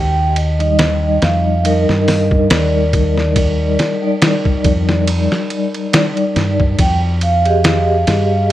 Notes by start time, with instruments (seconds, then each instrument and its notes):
Already playing: fingered electric bass D#2, vibraphone G5
0.36 vibraphone D#5, ride
0.59 vibraphone G3 D#4 D#5, ride
0.79 snare, ride
1.22 fingered electric bass F2, vibraphone F5, snare, ride
1.64 vibraphone G3 D#4 A#4 D#5, ride
1.89 fingered electric bass G2, snare
2.08 snare, open hi-hat
2.31 kick
2.50 fingered electric bass D#2, vibraphone D5, snare, ride
2.93 kick, ride
3.18 snare
3.36 vibraphone D5, kick, ride
3.79 snare, ride
4.02 vibraphone G3 D#4 D5
4.22 snare, ride
4.45 kick
4.64 fingered electric bass F2, kick, ride
4.89 snare
5.08 ride
5.32 snare
5.50 ride
5.74 ride
5.93 vibraphone G3 D#4 D5, snare, ride
6.17 ride
6.36 fingered electric bass G2, snare, ride
6.60 kick
6.79 fingered electric bass F2, vibraphone G5, kick, ride
7.21 vibraphone F5, ride
7.45 vibraphone G4 G#4 D#5, ride
7.64 snare, ride
8.07 fingered electric bass G2, snare, ride